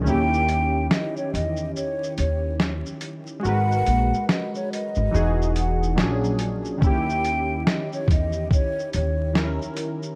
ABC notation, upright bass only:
X:1
M:4/4
L:1/16
Q:"Swing 16ths" 1/4=71
K:D#phr
V:1 name="Upright bass" clef=bass
D,,4 z2 E,,2 z2 D,,3 z3 | G,,,2 A,,, z4 G,,, E,,,4 A,,,4 | D,,4 z2 E,,2 z2 D,,3 z3 |]